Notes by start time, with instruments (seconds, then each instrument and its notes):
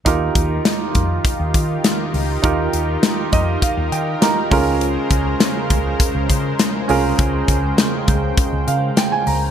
0.05 fingered electric bass D#2, analog synth pad D#3 D#4 F4 G4 A#4, grand piano D#4 F4 G4 A#4, kick, closed hi-hat
0.35 fingered electric bass D#2, kick, closed hi-hat
0.65 snare, closed hi-hat
0.95 fingered electric bass F2, kick, closed hi-hat
1.25 kick, closed hi-hat
1.40 fingered electric bass D#2
1.54 fingered electric bass D#3, kick, closed hi-hat
1.84 snare, closed hi-hat
2.14 fingered electric bass C#2, open hi-hat
2.42 fingered electric bass D#2, grand piano D#4 F4 G4 A#4, kick, closed hi-hat
2.73 fingered electric bass D#2, closed hi-hat
3.03 snare, closed hi-hat
3.33 fingered electric bass F2, grand piano D#5, kick, closed hi-hat
3.62 grand piano F5, kick, closed hi-hat
3.77 fingered electric bass D#2
3.92 fingered electric bass D#3, grand piano G5, closed hi-hat
4.21 grand piano D#4 F4 G4 A#4 A#5, snare, closed hi-hat
4.50 fingered electric bass C#2, analog synth pad C#3 G#3 C5, grand piano C#4 F4 G#4 A#4 A#5, kick, open hi-hat
4.81 closed hi-hat
5.11 fingered electric bass C#2, kick, closed hi-hat
5.40 snare, closed hi-hat
5.70 fingered electric bass C#2, kick, closed hi-hat
6.00 kick, closed hi-hat
6.15 fingered electric bass C#2
6.30 fingered electric bass C#3, kick, closed hi-hat
6.59 snare, closed hi-hat
6.88 fingered electric bass C2, grand piano C#4 F4 G#4 A#4, analog synth pad G5, open hi-hat
7.19 fingered electric bass C#2, kick, closed hi-hat
7.48 fingered electric bass C#2, kick, closed hi-hat
7.78 snare, closed hi-hat
8.08 fingered electric bass C#2, kick, closed hi-hat
8.38 kick, closed hi-hat
8.53 fingered electric bass C#2
8.67 fingered electric bass C#3, grand piano F5, closed hi-hat
8.97 grand piano G5, snare, closed hi-hat
9.12 grand piano G#5
9.27 fingered electric bass C#2, grand piano A#5, open hi-hat